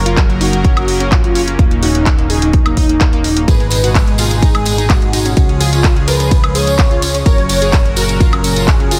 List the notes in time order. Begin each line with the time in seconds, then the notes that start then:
Already playing: F#1 C#3 F#3 A#3 C#4 A#4
0.06 F4, closed hi-hat
0.17 F#3, kick, clap, closed hi-hat
0.29 F#3, closed hi-hat
0.41 D#4 F#4, open hi-hat
0.53 F#3, closed hi-hat
0.64 C#4, kick, closed hi-hat
0.77 F#3, closed hi-hat, high woodblock
0.88 F#3, open hi-hat
1.00 C#4, closed hi-hat
1.11 F#3 F4, kick, clap, closed hi-hat
1.24 F#3, closed hi-hat
1.35 C#4, open hi-hat
1.48 A#3, closed hi-hat
1.59 D#1 A#2 F#3 A#3 D#4, kick, closed hi-hat
1.71 A#3, closed hi-hat
1.83 D#4 F#4, open hi-hat
1.95 A#3, closed hi-hat
2.06 A#3, kick, clap, closed hi-hat
2.18 A#3, closed hi-hat
2.30 D#4 G#4, open hi-hat
2.42 A#3, closed hi-hat
2.53 kick, closed hi-hat
2.66 A#3, closed hi-hat, high woodblock
2.77 D#4, kick, open hi-hat
2.89 A#3, closed hi-hat
3.01 A#3, kick, clap, closed hi-hat
3.13 A#3, closed hi-hat
3.24 A#3, open hi-hat
3.37 A#3, closed hi-hat
3.48 G#1 B2 G#3 G#4 B4, kick, closed hi-hat, ride, tambourine
3.60 G#3, closed hi-hat
3.71 G#3, open hi-hat, ride, tambourine
3.84 F#4, closed hi-hat, tambourine
3.95 G#3, kick, clap, closed hi-hat, ride, tambourine
4.07 G#3, closed hi-hat
4.18 F4 G#4, open hi-hat, ride, tambourine
4.30 G#3, closed hi-hat, tambourine
4.42 D#4, kick, closed hi-hat, ride, tambourine
4.55 G#3, closed hi-hat, high woodblock
4.65 G#3, open hi-hat, ride, tambourine
4.78 D#4, closed hi-hat, tambourine
4.89 G#3 F#4, kick, clap, closed hi-hat, ride, tambourine
5.02 G#3, closed hi-hat
5.13 D#4, open hi-hat, ride, tambourine
5.25 C#4, closed hi-hat, tambourine
5.37 C#2 C#3 F3 C#4 F4 G#4, kick, closed hi-hat, ride, tambourine
5.49 C#4, closed hi-hat
5.60 F4 G#4, open hi-hat, ride, tambourine
5.73 C#4, closed hi-hat, tambourine
5.84 kick, clap, closed hi-hat, ride
5.96 C#4, closed hi-hat
6.08 A#4 B4, open hi-hat, ride, tambourine
6.20 C#4, closed hi-hat, tambourine
6.31 kick, closed hi-hat, ride, tambourine
6.44 C#4, closed hi-hat, high woodblock
6.55 G#4 C#5, open hi-hat, ride, tambourine
6.67 C#4, closed hi-hat, tambourine
6.78 kick, clap, closed hi-hat, ride, tambourine
6.91 F4, closed hi-hat
7.02 C#4, open hi-hat, ride, tambourine
7.14 C#4, closed hi-hat, tambourine
7.26 F#1 A#2 F#3 F#4 A#4 C#5, kick, closed hi-hat, ride, tambourine
7.38 C#4, closed hi-hat
7.49 C#4, open hi-hat, ride, tambourine
7.61 G#4, closed hi-hat, tambourine
7.72 C#4, kick, clap, closed hi-hat, ride, tambourine
7.85 C#4, closed hi-hat
7.96 F#4 A#4, open hi-hat, ride, tambourine
8.09 C#4, closed hi-hat, tambourine
8.20 F4, kick, closed hi-hat, ride, tambourine
8.33 C#4, closed hi-hat, high woodblock
8.44 C#4, open hi-hat, ride, tambourine
8.56 F4, closed hi-hat, tambourine
8.67 C#4 G#4, kick, clap, closed hi-hat, ride
8.80 C#4, closed hi-hat
8.91 F4, open hi-hat, ride, tambourine